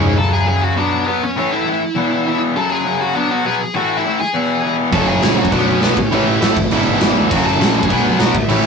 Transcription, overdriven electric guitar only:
Already playing: C#3 G#3 C#4
0.17 F#2 C#3 F#3
0.47 F#2 C#3 F#3
0.76 B2 F#3 B3
1.06 B2 F#3 B3
1.36 A2 E3 A3
1.66 A2 E3 A3
1.95 E2 B2 E3
2.26 E2 B2 E3
2.55 F#2 C#3 F#3
2.85 F#2 C#3 F#3
3.15 B2 F#3 B3
3.45 B2 F#3 B3
3.74 A2 E3 A3
4.04 A2 E3 A3
4.34 E2 B2 E3
4.63 E2 B2 E3
4.93 F#2 C#3 F#3
5.23 F#2 C#3 F#3
5.52 B2 F#3 B3
5.83 B2 F#3 B3
6.12 A2 E3 A3
6.42 A2 E3 A3
6.72 E2 B2 E3
7.02 E2 B2 E3
7.31 F#2 C#3 F#3
7.60 F#2 C#3 F#3
7.90 B2 F#3 B3
8.20 B2 F#3 B3
8.49 A2 E3 A3

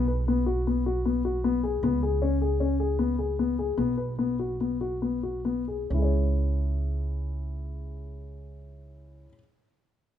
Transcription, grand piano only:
0.08 B4
0.28 B3
0.46 F#4
0.67 B3
0.86 F#4
1.05 B3
1.25 F#4
1.44 B3
1.63 G#4
1.83 B3
2.03 G#4
2.22 C#4
2.41 G#4
2.60 C#4
2.80 G#4
2.99 B3
3.19 G#4
3.39 B3
3.59 G#4
3.78 B3
3.97 B4
4.19 B3
4.39 F#4
4.61 B3
4.81 F#4
5.02 B3
5.23 F#4
5.45 B3
5.68 G#4
5.90 C#4 E4
5.98 G#4 C#5

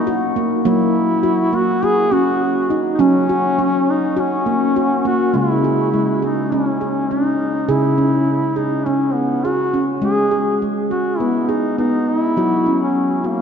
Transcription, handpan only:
Already playing: F#3
0.07 F#4
0.36 A#3
0.65 F#3 A#3
1.23 F#4
1.53 A#3
1.83 F#4
2.12 C#4
2.70 D#4
2.99 F#3 C#4
3.29 F#4
3.59 C#4
4.17 F#4
4.46 A#3
4.76 F#4
5.05 A#3
5.34 C#3 G#3
5.64 G#4
5.94 G#3
6.22 G#4
6.52 C#4
6.81 G#4
7.11 C#4
7.68 C#3 G#4
7.98 C#4
8.56 G#4
8.86 C#4
9.45 G#4
9.74 C#4
10.02 G#3
10.31 G#4
10.62 G#3
10.91 G#4
11.20 B3
11.49 G#4
11.78 B3
12.37 F#3 F#4
12.66 C#4
13.24 F#4

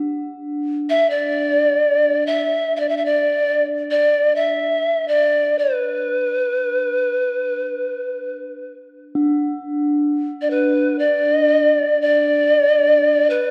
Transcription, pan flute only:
0.90 E5
1.10 D5
2.27 E5
2.76 D5 E5
2.89 E5
2.97 E5
3.05 D5
3.91 D5
4.36 E5
5.08 D5
5.59 B4
10.42 D5
10.50 B4
10.99 D5
12.02 D5
13.30 B4

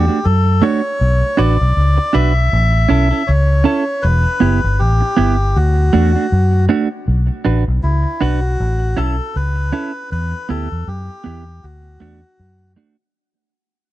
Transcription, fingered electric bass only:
0.26 F#2
1.01 B1
1.39 A1
1.61 B1
1.77 C#2
2.15 B1
2.53 A1
2.90 B1
3.29 C#2
4.04 E1
4.42 F#1
4.64 G1
4.81 A1
5.19 G1
5.57 D2
5.94 E2
6.32 F#2
7.08 B1
7.46 A1
7.68 B1
7.84 C#2
8.22 B1
8.60 A1
8.98 B1
9.36 C#2
10.12 E2
10.50 D2
10.72 E2
10.87 F#2
11.26 E2
11.64 D2
12.01 E2
12.40 F#2

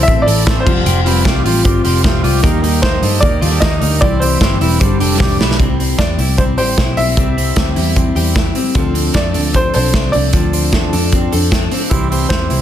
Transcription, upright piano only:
0.03 E5
0.22 D5
0.60 C5
2.82 C5
3.20 D5
3.60 D#5
4.01 D5
4.20 C5
5.98 D5
6.38 C5
6.58 C5
6.97 E5
9.15 D5
9.56 C5
9.74 C5
10.12 D5
12.29 C5

